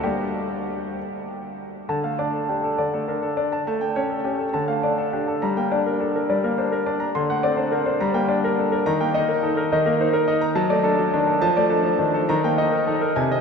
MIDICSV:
0, 0, Header, 1, 2, 480
1, 0, Start_track
1, 0, Tempo, 617284
1, 28, Time_signature, 6, 3, 24, 8
1, 1467, Tempo, 589391
1, 4347, Tempo, 569801
1, 8667, Tempo, 581959
1, 11023, End_track
2, 0, Start_track
2, 0, Title_t, "Grand piano"
2, 0, Program_c, 0, 0
2, 0, Control_c, 0, 64, 127
2, 27, Note_on_c, 0, 58, 33
2, 27, Note_on_c, 0, 67, 65
2, 28, Note_on_c, 0, 55, 38
2, 31, Note_on_c, 0, 62, 36
2, 40, Control_c, 0, 64, 0
2, 166, Control_c, 0, 64, 127
2, 534, Note_off_c, 0, 55, 0
2, 606, Note_off_c, 0, 58, 0
2, 608, Note_off_c, 0, 62, 0
2, 760, Control_c, 0, 64, 0
2, 1230, Note_off_c, 0, 67, 0
2, 1469, Note_on_c, 0, 50, 62
2, 1470, Note_on_c, 0, 81, 55
2, 1590, Note_on_c, 0, 77, 47
2, 1594, Note_on_c, 0, 57, 46
2, 1628, Control_c, 0, 64, 127
2, 1662, Note_off_c, 0, 81, 0
2, 1712, Note_on_c, 0, 74, 52
2, 1714, Note_on_c, 0, 62, 52
2, 1782, Note_off_c, 0, 77, 0
2, 1784, Note_off_c, 0, 57, 0
2, 1835, Note_on_c, 0, 69, 43
2, 1903, Note_off_c, 0, 74, 0
2, 1904, Note_off_c, 0, 62, 0
2, 1955, Note_on_c, 0, 67, 44
2, 1956, Note_on_c, 0, 62, 43
2, 2025, Note_off_c, 0, 69, 0
2, 2073, Note_off_c, 0, 67, 0
2, 2077, Note_on_c, 0, 69, 47
2, 2146, Note_off_c, 0, 62, 0
2, 2185, Note_off_c, 0, 50, 0
2, 2197, Note_on_c, 0, 50, 51
2, 2198, Note_on_c, 0, 74, 49
2, 2200, Control_c, 0, 64, 0
2, 2266, Note_off_c, 0, 69, 0
2, 2323, Note_on_c, 0, 69, 52
2, 2324, Note_on_c, 0, 57, 47
2, 2387, Note_off_c, 0, 74, 0
2, 2441, Note_on_c, 0, 62, 46
2, 2442, Note_on_c, 0, 70, 41
2, 2509, Note_off_c, 0, 57, 0
2, 2509, Note_off_c, 0, 69, 0
2, 2556, Note_off_c, 0, 70, 0
2, 2558, Note_on_c, 0, 69, 52
2, 2628, Note_off_c, 0, 62, 0
2, 2673, Note_on_c, 0, 62, 44
2, 2675, Note_on_c, 0, 74, 55
2, 2745, Note_off_c, 0, 69, 0
2, 2801, Note_on_c, 0, 81, 56
2, 2863, Note_off_c, 0, 62, 0
2, 2864, Note_off_c, 0, 74, 0
2, 2891, Note_off_c, 0, 50, 0
2, 2909, Note_off_c, 0, 81, 0
2, 2920, Note_on_c, 0, 57, 66
2, 2921, Note_on_c, 0, 81, 58
2, 3024, Note_off_c, 0, 57, 0
2, 3033, Note_on_c, 0, 79, 54
2, 3036, Note_on_c, 0, 57, 45
2, 3092, Control_c, 0, 64, 127
2, 3106, Note_off_c, 0, 81, 0
2, 3155, Note_on_c, 0, 73, 59
2, 3156, Note_on_c, 0, 61, 52
2, 3222, Note_off_c, 0, 79, 0
2, 3224, Note_off_c, 0, 57, 0
2, 3268, Note_on_c, 0, 69, 39
2, 3343, Note_off_c, 0, 73, 0
2, 3344, Note_off_c, 0, 61, 0
2, 3386, Note_on_c, 0, 67, 43
2, 3388, Note_on_c, 0, 61, 50
2, 3459, Note_off_c, 0, 69, 0
2, 3506, Note_off_c, 0, 67, 0
2, 3507, Note_on_c, 0, 69, 49
2, 3579, Note_off_c, 0, 61, 0
2, 3624, Note_on_c, 0, 81, 57
2, 3626, Note_off_c, 0, 69, 0
2, 3627, Note_on_c, 0, 50, 63
2, 3636, Control_c, 0, 64, 0
2, 3741, Note_on_c, 0, 77, 55
2, 3745, Note_on_c, 0, 57, 51
2, 3814, Control_c, 0, 64, 127
2, 3818, Note_off_c, 0, 81, 0
2, 3866, Note_on_c, 0, 62, 49
2, 3866, Note_on_c, 0, 74, 52
2, 3937, Note_off_c, 0, 77, 0
2, 3939, Note_off_c, 0, 57, 0
2, 3987, Note_on_c, 0, 69, 55
2, 4060, Note_off_c, 0, 62, 0
2, 4061, Note_off_c, 0, 74, 0
2, 4108, Note_on_c, 0, 62, 48
2, 4109, Note_on_c, 0, 67, 43
2, 4181, Note_off_c, 0, 69, 0
2, 4228, Note_on_c, 0, 69, 51
2, 4230, Note_off_c, 0, 67, 0
2, 4301, Note_off_c, 0, 62, 0
2, 4328, Note_off_c, 0, 50, 0
2, 4346, Note_on_c, 0, 82, 57
2, 4348, Note_off_c, 0, 69, 0
2, 4350, Note_on_c, 0, 55, 68
2, 4355, Control_c, 0, 64, 0
2, 4470, Note_on_c, 0, 79, 53
2, 4471, Note_on_c, 0, 58, 46
2, 4497, Control_c, 0, 64, 127
2, 4543, Note_off_c, 0, 82, 0
2, 4593, Note_on_c, 0, 62, 54
2, 4594, Note_on_c, 0, 74, 55
2, 4665, Note_off_c, 0, 79, 0
2, 4666, Note_off_c, 0, 58, 0
2, 4720, Note_on_c, 0, 70, 52
2, 4786, Note_off_c, 0, 62, 0
2, 4787, Note_off_c, 0, 74, 0
2, 4836, Note_on_c, 0, 62, 51
2, 4836, Note_on_c, 0, 69, 50
2, 4909, Note_off_c, 0, 70, 0
2, 4955, Note_off_c, 0, 69, 0
2, 4965, Note_on_c, 0, 70, 50
2, 5027, Note_off_c, 0, 62, 0
2, 5069, Note_off_c, 0, 55, 0
2, 5080, Control_c, 0, 64, 0
2, 5081, Note_on_c, 0, 55, 57
2, 5083, Note_on_c, 0, 74, 54
2, 5151, Note_off_c, 0, 70, 0
2, 5203, Note_on_c, 0, 70, 51
2, 5205, Note_on_c, 0, 58, 53
2, 5270, Note_off_c, 0, 74, 0
2, 5321, Note_on_c, 0, 62, 53
2, 5322, Note_on_c, 0, 72, 50
2, 5390, Note_off_c, 0, 58, 0
2, 5390, Note_off_c, 0, 70, 0
2, 5437, Note_off_c, 0, 72, 0
2, 5442, Note_on_c, 0, 70, 58
2, 5508, Note_off_c, 0, 62, 0
2, 5561, Note_on_c, 0, 62, 57
2, 5561, Note_on_c, 0, 74, 56
2, 5629, Note_off_c, 0, 70, 0
2, 5675, Note_on_c, 0, 82, 60
2, 5749, Note_off_c, 0, 62, 0
2, 5749, Note_off_c, 0, 74, 0
2, 5775, Note_off_c, 0, 55, 0
2, 5794, Note_off_c, 0, 82, 0
2, 5802, Note_on_c, 0, 84, 64
2, 5805, Note_on_c, 0, 50, 68
2, 5927, Note_on_c, 0, 57, 52
2, 5927, Note_on_c, 0, 78, 65
2, 5948, Control_c, 0, 64, 127
2, 5989, Note_off_c, 0, 84, 0
2, 6039, Note_on_c, 0, 60, 57
2, 6040, Note_on_c, 0, 74, 65
2, 6112, Note_off_c, 0, 57, 0
2, 6112, Note_off_c, 0, 78, 0
2, 6155, Note_on_c, 0, 62, 50
2, 6158, Note_on_c, 0, 72, 54
2, 6228, Note_off_c, 0, 60, 0
2, 6228, Note_off_c, 0, 74, 0
2, 6278, Note_on_c, 0, 60, 59
2, 6280, Note_on_c, 0, 70, 51
2, 6346, Note_off_c, 0, 62, 0
2, 6348, Note_off_c, 0, 72, 0
2, 6397, Note_off_c, 0, 70, 0
2, 6400, Note_on_c, 0, 62, 55
2, 6401, Note_on_c, 0, 72, 58
2, 6468, Note_off_c, 0, 60, 0
2, 6498, Note_off_c, 0, 50, 0
2, 6517, Note_off_c, 0, 62, 0
2, 6517, Note_off_c, 0, 72, 0
2, 6519, Control_c, 0, 64, 0
2, 6521, Note_on_c, 0, 82, 65
2, 6525, Note_on_c, 0, 55, 70
2, 6636, Note_on_c, 0, 58, 53
2, 6637, Note_on_c, 0, 79, 65
2, 6687, Control_c, 0, 64, 127
2, 6710, Note_off_c, 0, 82, 0
2, 6758, Note_on_c, 0, 62, 55
2, 6758, Note_on_c, 0, 74, 57
2, 6827, Note_off_c, 0, 58, 0
2, 6827, Note_off_c, 0, 79, 0
2, 6892, Note_on_c, 0, 70, 63
2, 6947, Note_off_c, 0, 62, 0
2, 6947, Note_off_c, 0, 74, 0
2, 7010, Note_on_c, 0, 69, 49
2, 7011, Note_on_c, 0, 62, 57
2, 7074, Note_off_c, 0, 70, 0
2, 7121, Note_off_c, 0, 69, 0
2, 7125, Note_on_c, 0, 70, 63
2, 7193, Note_off_c, 0, 62, 0
2, 7216, Note_off_c, 0, 55, 0
2, 7238, Note_off_c, 0, 70, 0
2, 7238, Control_c, 0, 64, 0
2, 7243, Note_on_c, 0, 82, 75
2, 7246, Note_on_c, 0, 51, 76
2, 7364, Note_on_c, 0, 79, 67
2, 7366, Note_on_c, 0, 58, 56
2, 7400, Control_c, 0, 64, 127
2, 7429, Note_off_c, 0, 82, 0
2, 7482, Note_on_c, 0, 75, 68
2, 7486, Note_on_c, 0, 63, 62
2, 7551, Note_off_c, 0, 58, 0
2, 7551, Note_off_c, 0, 79, 0
2, 7602, Note_on_c, 0, 70, 57
2, 7670, Note_off_c, 0, 75, 0
2, 7672, Note_off_c, 0, 63, 0
2, 7722, Note_on_c, 0, 69, 51
2, 7723, Note_on_c, 0, 63, 57
2, 7791, Note_off_c, 0, 70, 0
2, 7838, Note_off_c, 0, 69, 0
2, 7842, Note_on_c, 0, 70, 61
2, 7911, Note_off_c, 0, 63, 0
2, 7958, Note_off_c, 0, 51, 0
2, 7965, Control_c, 0, 64, 0
2, 7970, Note_on_c, 0, 51, 69
2, 7971, Note_on_c, 0, 75, 63
2, 8031, Note_off_c, 0, 70, 0
2, 8083, Note_on_c, 0, 70, 62
2, 8085, Note_on_c, 0, 58, 62
2, 8154, Note_off_c, 0, 75, 0
2, 8206, Note_on_c, 0, 63, 64
2, 8207, Note_on_c, 0, 72, 56
2, 8269, Note_off_c, 0, 70, 0
2, 8270, Note_off_c, 0, 58, 0
2, 8316, Note_on_c, 0, 70, 73
2, 8319, Note_off_c, 0, 72, 0
2, 8390, Note_off_c, 0, 63, 0
2, 8436, Note_on_c, 0, 63, 66
2, 8436, Note_on_c, 0, 75, 65
2, 8504, Note_off_c, 0, 70, 0
2, 8551, Note_on_c, 0, 82, 70
2, 8624, Note_off_c, 0, 63, 0
2, 8624, Note_off_c, 0, 75, 0
2, 8656, Note_off_c, 0, 51, 0
2, 8669, Note_on_c, 0, 81, 67
2, 8670, Note_off_c, 0, 82, 0
2, 8670, Note_on_c, 0, 54, 78
2, 8786, Note_on_c, 0, 57, 60
2, 8789, Note_on_c, 0, 74, 68
2, 8838, Control_c, 0, 64, 127
2, 8858, Note_off_c, 0, 81, 0
2, 8900, Note_on_c, 0, 62, 61
2, 8904, Note_on_c, 0, 69, 73
2, 8976, Note_off_c, 0, 57, 0
2, 8978, Note_off_c, 0, 74, 0
2, 9015, Note_off_c, 0, 54, 0
2, 9027, Note_on_c, 0, 54, 62
2, 9093, Note_off_c, 0, 62, 0
2, 9095, Note_off_c, 0, 69, 0
2, 9150, Note_on_c, 0, 62, 64
2, 9152, Note_on_c, 0, 51, 54
2, 9216, Note_off_c, 0, 54, 0
2, 9263, Note_on_c, 0, 69, 56
2, 9267, Note_off_c, 0, 51, 0
2, 9337, Note_off_c, 0, 62, 0
2, 9379, Note_on_c, 0, 81, 73
2, 9381, Note_on_c, 0, 53, 79
2, 9382, Note_off_c, 0, 69, 0
2, 9392, Control_c, 0, 64, 0
2, 9502, Note_on_c, 0, 57, 63
2, 9505, Note_on_c, 0, 74, 72
2, 9560, Control_c, 0, 64, 127
2, 9571, Note_off_c, 0, 81, 0
2, 9613, Note_on_c, 0, 69, 61
2, 9616, Note_on_c, 0, 62, 61
2, 9692, Note_off_c, 0, 57, 0
2, 9694, Note_off_c, 0, 74, 0
2, 9718, Note_off_c, 0, 53, 0
2, 9731, Note_on_c, 0, 53, 67
2, 9808, Note_off_c, 0, 69, 0
2, 9809, Note_off_c, 0, 62, 0
2, 9853, Note_on_c, 0, 62, 54
2, 9854, Note_on_c, 0, 51, 59
2, 9926, Note_off_c, 0, 53, 0
2, 9976, Note_off_c, 0, 51, 0
2, 9979, Note_on_c, 0, 69, 69
2, 10047, Note_off_c, 0, 62, 0
2, 10098, Note_off_c, 0, 69, 0
2, 10100, Note_on_c, 0, 82, 72
2, 10104, Note_on_c, 0, 51, 78
2, 10110, Control_c, 0, 64, 0
2, 10223, Note_on_c, 0, 58, 53
2, 10226, Note_on_c, 0, 79, 67
2, 10241, Control_c, 0, 64, 127
2, 10292, Note_off_c, 0, 82, 0
2, 10340, Note_on_c, 0, 63, 62
2, 10341, Note_on_c, 0, 75, 64
2, 10413, Note_off_c, 0, 58, 0
2, 10415, Note_off_c, 0, 79, 0
2, 10453, Note_on_c, 0, 70, 48
2, 10533, Note_off_c, 0, 63, 0
2, 10534, Note_off_c, 0, 75, 0
2, 10577, Note_on_c, 0, 63, 62
2, 10579, Note_on_c, 0, 69, 55
2, 10651, Note_off_c, 0, 70, 0
2, 10698, Note_on_c, 0, 70, 60
2, 10702, Note_off_c, 0, 69, 0
2, 10774, Note_off_c, 0, 63, 0
2, 10806, Note_off_c, 0, 51, 0
2, 10820, Note_on_c, 0, 80, 61
2, 10821, Note_on_c, 0, 48, 71
2, 10823, Note_off_c, 0, 70, 0
2, 10837, Control_c, 0, 64, 0
2, 10947, Note_on_c, 0, 75, 64
2, 10949, Note_on_c, 0, 60, 54
2, 11002, Control_c, 0, 64, 127
2, 11019, Note_off_c, 0, 80, 0
2, 11023, Note_off_c, 0, 48, 0
2, 11023, Note_off_c, 0, 60, 0
2, 11023, Note_off_c, 0, 75, 0
2, 11023, End_track
0, 0, End_of_file